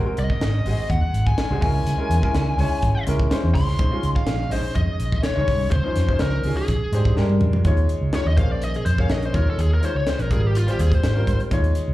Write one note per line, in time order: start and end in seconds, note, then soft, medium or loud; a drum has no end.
0.05 0.59 G#3 medium
0.05 0.59 C4 medium
0.05 0.59 F#4 medium
0.05 0.59 A#4 medium
0.05 muted fretless electric bass stroke soft
0.17 0.27 C2 medium
0.17 0.87 D#5 medium
0.17 closed hi-hat medium
0.30 kick medium
0.41 0.60 G#1 medium
0.41 snare loud
0.41 closed hi-hat medium
0.65 0.75 G#1 medium
0.65 1.41 G#3 medium
0.65 1.41 C4 medium
0.65 1.42 F#4 medium
0.65 1.42 G#4 medium
0.65 open hi-hat medium
0.79 muted fretless electric bass stroke soft
0.90 1.00 D#2 loud
0.90 1.24 F#5 loud
0.90 kick medium
0.90 closed hi-hat medium
1.02 muted fretless electric bass stroke soft
1.14 1.32 G#1 medium
1.14 closed hi-hat medium
1.27 1.61 G#5 medium
1.27 kick medium
1.38 snare loud
1.38 closed hi-hat medium
1.50 1.59 C2 medium
1.50 1.60 G#3 medium
1.50 1.62 C4 medium
1.50 1.63 F#4 medium
1.50 1.63 G#4 medium
1.62 1.81 C#2 medium
1.62 1.95 G#3 medium
1.62 1.95 C#4 medium
1.62 1.95 E4 medium
1.62 1.96 A#4 medium
1.62 3.03 G#5 medium
1.62 kick loud
1.62 open hi-hat medium
1.86 1.96 C#2 loud
1.86 closed hi-hat medium
1.98 2.20 G#3 medium
1.98 2.20 C#4 medium
1.98 2.20 E4 medium
1.98 2.21 A#4 medium
1.98 muted fretless electric bass stroke soft
2.10 2.20 E2 medium
2.10 closed hi-hat medium
2.21 2.54 G#3 medium
2.21 2.54 C#4 medium
2.21 2.55 E4 medium
2.21 2.55 A#4 loud
2.21 kick medium
2.34 2.53 C#2 medium
2.34 snare loud
2.34 closed hi-hat medium
2.58 2.68 C#2 medium
2.58 3.02 G#3 medium
2.58 3.02 C#4 medium
2.58 3.02 E4 medium
2.58 3.03 C#5 medium
2.58 open hi-hat medium
2.71 muted fretless electric bass stroke soft
2.82 2.93 G#1 loud
2.82 kick medium
2.82 closed hi-hat medium
2.95 muted fretless electric bass stroke soft
3.06 3.26 C#2 medium
3.06 3.28 G#3 medium
3.06 3.29 C#4 medium
3.06 3.29 E4 medium
3.06 3.29 A#4 loud
3.06 closed hi-hat medium
3.20 kick medium
3.30 3.74 G#3 medium
3.30 3.74 C#4 medium
3.30 3.75 E4 medium
3.30 3.75 C5 medium
3.30 snare loud
3.30 closed hi-hat medium
3.44 3.53 E2 medium
3.55 3.74 C#2 medium
3.55 4.07 C6 loud
3.55 kick medium
3.55 snare soft
3.55 open hi-hat medium
3.68 snare soft
3.79 3.89 A#1 loud
3.79 3.89 G#3 medium
3.79 3.90 C#4 medium
3.79 3.90 D#4 medium
3.79 3.91 C5 medium
3.79 kick loud
3.79 closed hi-hat medium
3.91 4.45 G#3 medium
3.91 4.45 C#4 medium
3.91 4.46 D#4 medium
3.91 4.46 F4 medium
4.03 4.13 C#2 medium
4.03 closed hi-hat medium
4.16 4.49 F5 medium
4.16 kick medium
4.27 4.46 A#1 medium
4.27 snare loud
4.27 closed hi-hat medium
4.50 4.61 A#1 medium
4.50 5.26 G#3 medium
4.50 5.27 C#4 medium
4.50 5.27 D#4 medium
4.50 4.75 C5 medium
4.50 5.27 D#5 medium
4.50 snare soft
4.50 open hi-hat medium
4.65 muted fretless electric bass stroke soft
4.75 4.85 F2 loud
4.75 5.23 D#5 loud
4.75 kick medium
4.75 closed hi-hat medium
4.89 muted fretless electric bass stroke soft
5.00 5.19 A#1 medium
5.00 closed hi-hat medium
5.12 kick medium
5.23 5.71 C#5 medium
5.23 snare loud
5.23 closed hi-hat medium
5.35 5.46 C#2 medium
5.35 5.72 G#3 medium
5.35 5.72 C#4 medium
5.35 5.72 D#4 medium
5.35 5.73 C#5 medium
5.47 5.67 C2 medium
5.47 kick medium
5.47 snare soft
5.47 open hi-hat medium
5.71 5.82 C#2 loud
5.71 6.22 C5 medium
5.71 kick loud
5.71 closed hi-hat medium
5.84 6.06 F3 medium
5.84 6.06 C#4 medium
5.84 6.06 D#4 medium
5.84 6.07 C5 medium
5.84 muted fretless electric bass stroke soft
5.96 6.06 F2 medium
5.96 snare soft
5.96 closed hi-hat medium
6.09 6.41 F3 medium
6.09 6.41 C#4 medium
6.09 6.41 D#4 medium
6.09 6.42 C5 medium
6.09 kick medium
6.19 6.39 C#2 medium
6.19 6.54 A#4 medium
6.19 snare loud
6.19 closed hi-hat medium
6.43 6.54 C#2 medium
6.43 6.69 F3 medium
6.43 6.69 C#4 medium
6.43 6.69 D#4 medium
6.43 6.70 G#4 medium
6.43 open hi-hat medium
6.57 7.13 G#4 medium
6.57 muted fretless electric bass stroke soft
6.68 6.78 A#1 loud
6.68 kick medium
6.68 closed hi-hat medium
6.81 muted fretless electric bass stroke soft
6.92 7.14 G#2 medium
6.92 7.15 G#3 medium
6.92 7.15 D4 medium
6.92 7.15 G4 medium
6.92 7.15 C5 medium
6.92 closed hi-hat medium
7.05 kick medium
7.16 7.39 G2 medium
7.16 7.60 G#3 medium
7.16 7.60 D4 medium
7.16 7.61 G4 medium
7.16 7.61 A#4 medium
7.16 snare medium
7.30 high tom medium
7.40 7.63 F2 medium
7.40 mid tom medium
7.53 floor tom medium
7.65 7.84 D#2 medium
7.65 8.08 G#3 medium
7.65 8.09 D#4 medium
7.65 8.09 F4 medium
7.65 8.09 C#5 medium
7.65 kick loud
7.65 closed hi-hat medium
7.77 closed hi-hat soft
7.89 closed hi-hat medium
8.01 8.11 C#2 medium
8.13 8.37 G#3 medium
8.13 8.37 D#4 medium
8.13 8.38 F4 medium
8.13 8.38 C#5 medium
8.13 8.27 C#5 medium
8.13 snare loud
8.13 closed hi-hat medium
8.25 8.35 D#2 medium
8.25 8.37 D#5 medium
8.37 8.75 A#1 medium
8.37 8.91 A#3 medium
8.37 8.92 C#4 medium
8.37 8.92 G#4 medium
8.37 8.92 C5 medium
8.37 8.51 F5 medium
8.37 kick medium
8.37 closed hi-hat medium
8.51 8.64 D5 medium
8.62 8.75 D#5 medium
8.62 closed hi-hat medium
8.74 8.86 G#4 soft
8.74 closed hi-hat soft
8.86 9.05 F2 medium
8.86 8.98 C5 medium
8.86 closed hi-hat medium
8.98 9.34 A#3 medium
8.98 9.34 C#4 medium
8.98 9.34 G#4 medium
8.98 9.32 C#5 medium
8.98 9.12 F5 medium
8.98 kick medium
9.09 9.29 A#1 medium
9.09 9.25 D#5 medium
9.09 snare loud
9.09 closed hi-hat medium
9.22 9.35 C5 medium
9.22 closed hi-hat soft
9.32 9.44 D#2 medium
9.32 9.76 G#3 medium
9.32 9.77 D#4 medium
9.32 9.77 F4 medium
9.32 9.47 A#4 medium
9.32 9.77 C#5 medium
9.32 kick loud
9.32 closed hi-hat medium
9.50 9.60 A4 medium
9.58 9.77 D#2 medium
9.58 9.72 G#4 medium
9.58 closed hi-hat medium
9.74 9.84 A#4 medium
9.81 10.25 G#3 medium
9.81 10.25 D#4 medium
9.81 10.26 F4 medium
9.81 9.96 C5 medium
9.81 10.26 C#5 medium
9.81 closed hi-hat medium
9.95 10.04 C#2 medium
9.95 10.09 C#5 medium
10.07 10.22 C5 medium
10.07 snare loud
10.07 closed hi-hat medium
10.19 10.28 A#1 medium
10.19 10.32 A#4 medium
10.19 closed hi-hat soft
10.30 10.68 G#1 medium
10.30 10.63 G3 medium
10.30 10.63 C4 medium
10.30 10.64 F4 medium
10.30 10.47 G#4 medium
10.30 10.64 A#4 medium
10.30 kick medium
10.30 closed hi-hat medium
10.47 10.56 G4 medium
10.55 10.71 F4 medium
10.55 closed hi-hat medium
10.66 11.10 G3 medium
10.66 11.10 C4 medium
10.66 11.10 F4 medium
10.66 11.11 C5 medium
10.66 closed hi-hat soft
10.71 10.80 G4 medium
10.79 10.98 D#2 medium
10.79 10.92 G#4 medium
10.79 closed hi-hat medium
10.92 11.38 C5 medium
10.92 kick medium
10.92 closed hi-hat soft
11.03 11.22 G#1 medium
11.03 snare loud
11.03 closed hi-hat medium
11.15 11.47 G3 medium
11.15 11.47 C4 medium
11.15 11.47 F4 medium
11.15 11.48 A#4 medium
11.27 11.37 G#2 medium
11.27 kick medium
11.27 closed hi-hat medium
11.40 closed hi-hat soft
11.51 11.70 D#2 loud
11.51 11.94 G#3 medium
11.51 11.94 D#4 medium
11.51 11.94 F4 medium
11.51 11.94 C#5 loud
11.51 kick loud
11.51 closed hi-hat medium
11.64 closed hi-hat soft
11.75 closed hi-hat medium
11.88 11.94 C#2 medium